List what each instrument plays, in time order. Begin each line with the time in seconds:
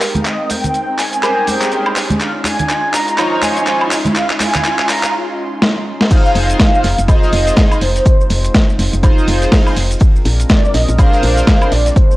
Already playing: analog synth pad G#3 C4 D#4 A#4 G5, riser
0.01 fm bass G#2, clap, open hi-hat, shaker
0.15 closed hi-hat, high conga, low conga, shaker
0.20 soft synth lead F5
0.25 soft synth lead D#5, clap, closed hi-hat, shaker
0.50 fm bass G#1, soft synth lead G5, open hi-hat, high conga, shaker
0.64 closed hi-hat, low conga, shaker
0.74 closed hi-hat, shaker
0.98 fm bass G#1, soft synth lead G#5, clap, open hi-hat, shaker
1.13 fm bass G#1, closed hi-hat, shaker
1.23 analog polysynth G4 G#4 A#4 C5, soft synth lead G#5, clap, closed hi-hat, high woodblock, shaker
1.47 fm bass G#1, soft synth lead G5, open hi-hat, high conga, shaker
1.62 clap, closed hi-hat, shaker
1.72 analog polysynth G4 G#4 A#4 C5, closed hi-hat, shaker
1.86 high woodblock
1.96 fm bass G#2, clap, open hi-hat, shaker
2.10 closed hi-hat, high conga, low conga, shaker
2.20 analog synth pad G#3 C#4 F4 C6, soft synth lead F5, clap, closed hi-hat, shaker
2.44 fm bass C#2, soft synth lead G#5, clap, open hi-hat, high conga, shaker
2.59 closed hi-hat, low conga, shaker
2.69 clap, closed hi-hat, shaker
2.94 fm bass C#2, soft synth lead A#5, clap, open hi-hat, shaker
3.08 fm bass C#2, closed hi-hat, shaker
3.18 analog polysynth D#4 F4 C5 C#5, soft synth lead A#5, clap, closed hi-hat, high woodblock, shaker
3.42 fm bass C#2, soft synth lead G#5, clap, open hi-hat, high conga, shaker
3.57 closed hi-hat, shaker
3.67 analog polysynth D#4 F4 C5 C#5, clap, closed hi-hat, shaker
3.81 high woodblock
3.91 fm bass G#1, clap, open hi-hat, shaker
4.05 closed hi-hat, high conga, low conga, shaker
4.16 soft synth lead F5, clap, closed hi-hat, shaker
4.30 clap
4.40 fm bass C#2, soft synth lead G#5, clap, open hi-hat, high conga, shaker
4.54 clap, closed hi-hat, low conga, shaker
4.64 clap, closed hi-hat, shaker
4.79 clap
4.89 fm bass C#2, soft synth lead A#5, clap, open hi-hat, shaker
5.03 fm bass C#2, clap, closed hi-hat, shaker
5.62 snare
6.01 snare
6.11 analog synth pad G#3 C4 D#4 F4 C5, analog polysynth D#4 F4 G#4 C5, soft synth lead F5, kick, closed hi-hat, crash, shaker
6.26 shaker
6.35 fm bass F1, open hi-hat, shaker
6.50 closed hi-hat, shaker
6.59 soft synth lead F5, kick, snare, closed hi-hat, shaker
6.75 shaker
6.84 fm bass F1, snare, open hi-hat, shaker
6.98 fm bass F1, closed hi-hat, shaker
7.08 analog polysynth D#4 F4 G#4 C5, soft synth lead D#5, kick, closed hi-hat, high woodblock, shaker
7.23 snare, shaker
7.33 fm bass F1, open hi-hat, shaker
7.47 snare, closed hi-hat, shaker
7.57 analog polysynth D#4 F4 G#4 C5, kick, snare, closed hi-hat, shaker
7.71 closed hi-hat, high woodblock, shaker
7.81 fm bass F1, soft synth lead C5, open hi-hat, shaker
7.96 snare, closed hi-hat, shaker
8.06 kick, closed hi-hat, shaker
8.21 shaker
8.30 fm bass F1, open hi-hat, shaker
8.45 closed hi-hat, shaker
8.55 kick, snare, closed hi-hat, shaker
8.70 shaker
8.79 fm bass F1, open hi-hat, shaker
8.93 fm bass F1, closed hi-hat, shaker
9.03 analog polysynth D#4 F4 G#4 C5, kick, closed hi-hat, high woodblock, shaker
9.19 shaker
9.28 fm bass F1, open hi-hat, shaker
9.42 snare, closed hi-hat, shaker
9.52 analog polysynth D#4 F4 G#4 C5, kick, snare, closed hi-hat, open hi-hat, shaker
9.67 high woodblock, shaker
9.77 fm bass F1, open hi-hat, shaker
9.91 closed hi-hat, shaker
10.00 analog synth pad D4 A#4, kick, closed hi-hat, shaker
10.16 shaker
10.25 fm bass A#1, open hi-hat, shaker
10.40 closed hi-hat, shaker
10.49 soft synth lead D5, kick, snare, closed hi-hat, shaker
10.65 shaker
10.74 fm bass A#1, soft synth lead D#5, snare, open hi-hat, shaker
10.88 fm bass A#1, closed hi-hat, shaker
10.98 analog polysynth D4 G#4 A#4 C5, soft synth lead F5, kick, closed hi-hat, high woodblock, shaker
11.12 snare, shaker
11.22 fm bass A#1, open hi-hat, shaker
11.37 snare, closed hi-hat, shaker
11.47 analog polysynth D4 G#4 A#4 C5, kick, snare, closed hi-hat, shaker
11.61 closed hi-hat, high woodblock, shaker
11.72 fm bass A#1, soft synth lead D5, open hi-hat, shaker
11.86 snare, closed hi-hat, shaker
11.96 analog synth pad C5, soft synth lead C5, kick, closed hi-hat, shaker
12.11 shaker